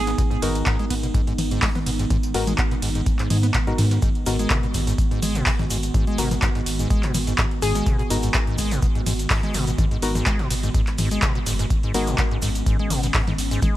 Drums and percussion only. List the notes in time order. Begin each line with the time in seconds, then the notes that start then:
0.07 snare, closed hi-hat
0.18 kick, closed hi-hat, tambourine
0.31 closed hi-hat
0.42 open hi-hat, ride, tambourine
0.55 closed hi-hat
0.66 kick, snare, clap, closed hi-hat, tambourine
0.79 closed hi-hat
0.90 kick, open hi-hat, ride, tambourine
1.03 closed hi-hat
1.14 kick, closed hi-hat, tambourine
1.27 closed hi-hat
1.38 open hi-hat, mid tom, ride, tambourine
1.51 closed hi-hat
1.62 kick, snare, clap, closed hi-hat, open hi-hat
1.75 snare, closed hi-hat, mid tom
1.86 open hi-hat, ride, tambourine
1.99 closed hi-hat
2.10 kick, closed hi-hat, mid tom, tambourine
2.23 closed hi-hat, tambourine
2.34 open hi-hat, ride
2.47 closed hi-hat, mid tom, tambourine
2.58 kick, clap, closed hi-hat, tambourine
2.71 closed hi-hat
2.82 open hi-hat, ride, tambourine
2.95 closed hi-hat
3.06 kick, closed hi-hat, tambourine
3.19 clap, closed hi-hat
3.30 open hi-hat, mid tom, ride, tambourine
3.43 closed hi-hat
3.54 kick, snare, clap, closed hi-hat, tambourine
3.67 closed hi-hat
3.78 snare, open hi-hat, mid tom, ride, tambourine
3.91 snare, closed hi-hat
4.02 kick, closed hi-hat, tambourine, shaker
4.15 closed hi-hat
4.26 open hi-hat, ride, tambourine, shaker
4.39 closed hi-hat, shaker
4.50 kick, snare, clap, closed hi-hat, tambourine, shaker
4.63 closed hi-hat
4.74 kick, open hi-hat, ride, tambourine, shaker
4.87 closed hi-hat, shaker
4.98 kick, closed hi-hat, tambourine, shaker
5.11 closed hi-hat
5.22 open hi-hat, mid tom, ride, tambourine, shaker
5.35 closed hi-hat, shaker
5.46 kick, snare, clap, closed hi-hat, open hi-hat, shaker
5.59 snare, closed hi-hat, mid tom
5.70 open hi-hat, ride, tambourine, shaker
5.83 closed hi-hat, shaker
5.94 kick, closed hi-hat, mid tom, tambourine, shaker
6.07 closed hi-hat
6.18 open hi-hat, ride, tambourine, shaker
6.31 snare, closed hi-hat, mid tom, shaker
6.42 kick, snare, clap, closed hi-hat, tambourine, shaker
6.55 snare, closed hi-hat
6.66 open hi-hat, ride, tambourine, shaker
6.79 closed hi-hat, shaker
6.90 kick, closed hi-hat, tambourine, shaker
7.03 clap, closed hi-hat
7.14 open hi-hat, mid tom, ride, tambourine, shaker
7.27 closed hi-hat, shaker
7.38 kick, snare, clap, closed hi-hat, tambourine, shaker
7.51 closed hi-hat
7.62 snare, open hi-hat, ride, tambourine, shaker
7.75 snare, closed hi-hat, shaker
7.86 kick, closed hi-hat, tambourine, shaker
7.99 closed hi-hat
8.10 open hi-hat, ride, tambourine, shaker
8.22 closed hi-hat, shaker
8.34 kick, snare, clap, closed hi-hat, tambourine, shaker
8.47 closed hi-hat
8.58 kick, open hi-hat, ride, tambourine, shaker
8.71 closed hi-hat, shaker
8.82 kick, closed hi-hat, tambourine, shaker
8.95 closed hi-hat
9.06 open hi-hat, mid tom, ride, tambourine, shaker
9.19 closed hi-hat, shaker
9.30 kick, snare, clap, closed hi-hat, open hi-hat, shaker
9.43 snare, closed hi-hat, mid tom
9.54 open hi-hat, ride, tambourine, shaker
9.67 closed hi-hat, shaker
9.78 kick, closed hi-hat, mid tom, tambourine, shaker
9.91 closed hi-hat
10.02 open hi-hat, ride, tambourine, shaker
10.15 snare, closed hi-hat, mid tom, shaker
10.26 kick, snare, clap, closed hi-hat, tambourine, shaker
10.39 snare, closed hi-hat
10.50 open hi-hat, ride, tambourine, shaker
10.63 closed hi-hat, shaker
10.74 kick, closed hi-hat, tambourine, shaker
10.87 clap, closed hi-hat
10.98 open hi-hat, mid tom, ride, tambourine, shaker
11.11 closed hi-hat, shaker
11.22 kick, snare, clap, closed hi-hat, tambourine, shaker
11.35 closed hi-hat
11.46 snare, open hi-hat, ride, tambourine, shaker
11.59 snare, closed hi-hat, shaker
11.70 kick, closed hi-hat, tambourine, shaker
11.83 closed hi-hat
11.94 open hi-hat, ride, tambourine, shaker
12.07 closed hi-hat, shaker
12.18 kick, snare, clap, closed hi-hat, tambourine, shaker
12.31 closed hi-hat
12.42 kick, open hi-hat, ride, tambourine, shaker
12.55 closed hi-hat, shaker
12.66 kick, closed hi-hat, tambourine, shaker
12.79 closed hi-hat
12.90 open hi-hat, mid tom, ride, tambourine, shaker
13.03 closed hi-hat, shaker
13.14 kick, snare, clap, closed hi-hat, open hi-hat, shaker
13.27 snare, closed hi-hat, mid tom
13.38 open hi-hat, ride, tambourine, shaker
13.51 closed hi-hat, shaker
13.62 kick, closed hi-hat, mid tom, tambourine, shaker